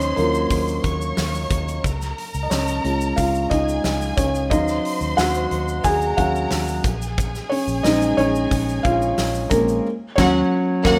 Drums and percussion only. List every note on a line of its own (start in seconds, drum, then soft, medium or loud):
0.01 hi-hat pedal medium
0.01 shaker medium
0.17 hi-hat pedal medium
0.17 open hi-hat medium
0.34 shaker medium
0.50 kick medium
0.50 hi-hat pedal medium
0.50 open hi-hat medium
0.50 shaker medium
0.68 shaker soft
0.84 kick medium
0.84 hi-hat pedal medium
0.84 open hi-hat medium
1.01 shaker soft
1.17 snare loud
1.17 hi-hat pedal medium
1.17 open hi-hat medium
1.17 shaker medium
1.34 open hi-hat medium
1.34 shaker soft
1.51 kick loud
1.51 hi-hat pedal medium
1.51 open hi-hat medium
1.51 shaker medium
1.68 hi-hat pedal medium
1.68 shaker soft
1.84 kick medium
1.84 hi-hat pedal medium
1.84 open hi-hat medium
1.84 shaker medium
2.01 snare soft
2.01 shaker medium
2.18 hi-hat pedal medium
2.18 open hi-hat medium
2.34 open hi-hat soft
2.34 shaker medium
2.51 snare loud
2.51 hi-hat pedal medium
2.51 open hi-hat medium
2.51 shaker medium
2.67 hi-hat pedal medium
2.67 shaker medium
2.84 hi-hat pedal medium
2.84 open hi-hat medium
3.01 shaker medium
3.17 kick medium
3.17 hi-hat pedal medium
3.17 open hi-hat medium
3.17 shaker medium
3.35 shaker soft
3.51 kick medium
3.51 hi-hat pedal medium
3.51 open hi-hat medium
3.69 shaker soft
3.84 snare loud
3.84 hi-hat pedal medium
3.84 open hi-hat medium
3.84 shaker medium
4.01 open hi-hat medium
4.01 shaker medium
4.18 kick loud
4.18 hi-hat pedal medium
4.18 open hi-hat medium
4.18 shaker medium
4.35 hi-hat pedal medium
4.35 shaker soft
4.51 kick loud
4.51 hi-hat pedal medium
4.51 open hi-hat medium
4.51 shaker medium
4.68 snare soft
4.68 shaker medium
4.85 hi-hat pedal medium
4.85 open hi-hat medium
5.01 open hi-hat medium
5.01 shaker medium
5.18 snare loud
5.18 hi-hat pedal medium
5.18 open hi-hat medium
5.18 shaker medium
5.34 hi-hat pedal medium
5.34 shaker medium
5.51 hi-hat pedal medium
5.51 open hi-hat medium
5.68 shaker medium
5.84 kick medium
5.84 hi-hat pedal medium
5.84 open hi-hat loud
5.84 shaker medium
6.02 shaker soft
6.17 kick medium
6.17 hi-hat pedal medium
6.17 open hi-hat medium
6.35 shaker soft
6.51 snare loud
6.51 hi-hat pedal medium
6.51 open hi-hat medium
6.51 shaker medium
6.67 open hi-hat medium
6.67 shaker medium
6.84 kick loud
6.84 hi-hat pedal medium
6.84 open hi-hat medium
6.84 shaker medium
7.02 hi-hat pedal medium
7.02 shaker medium
7.18 kick loud
7.18 hi-hat pedal medium
7.18 open hi-hat medium
7.18 shaker medium
7.35 snare soft
7.35 shaker medium
7.51 hi-hat pedal medium
7.51 open hi-hat medium
7.68 open hi-hat medium
7.68 shaker medium
7.84 snare loud
7.84 hi-hat pedal medium
7.84 open hi-hat medium
7.84 shaker medium
8.01 hi-hat pedal medium
8.01 shaker medium
8.18 hi-hat pedal medium
8.18 open hi-hat medium
8.35 shaker medium
8.51 kick medium
8.51 hi-hat pedal medium
8.51 open hi-hat loud
8.51 shaker medium
8.69 shaker medium
8.84 kick loud
8.84 hi-hat pedal medium
8.84 open hi-hat medium
9.02 shaker soft
9.18 snare loud
9.18 hi-hat pedal medium
9.18 open hi-hat medium
9.18 shaker medium
9.35 open hi-hat medium
9.35 shaker medium
9.51 kick loud
9.51 hi-hat pedal medium
9.51 open hi-hat medium
9.51 shaker medium
9.68 hi-hat pedal medium
9.68 shaker soft
10.18 kick loud
10.18 snare loud
10.18 crash medium
10.85 kick loud
10.85 snare loud